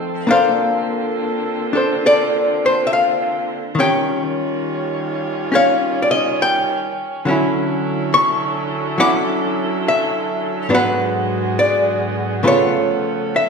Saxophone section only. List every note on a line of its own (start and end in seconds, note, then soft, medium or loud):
0.00 0.12 D#3 medium
0.00 0.12 A3 soft
0.00 3.73 C4 medium
0.00 3.72 F4 soft
0.00 3.72 A4 medium
0.29 3.74 D3 medium
0.29 3.74 A#3 medium
3.79 7.08 D#3 medium
3.79 7.08 G3 medium
3.79 10.67 C#4 medium
3.79 7.08 F4 medium
3.79 7.08 C#5 medium
7.25 12.39 D3 medium
7.25 10.67 F#3 medium
7.25 10.67 E4 medium
7.25 10.67 A4 medium
10.69 12.41 G#3 medium
10.69 13.49 B3 medium
10.69 12.41 F#4 medium
10.69 12.41 G#4 medium
12.42 13.49 F3 medium
12.42 13.49 C#4 medium
12.42 13.49 A4 medium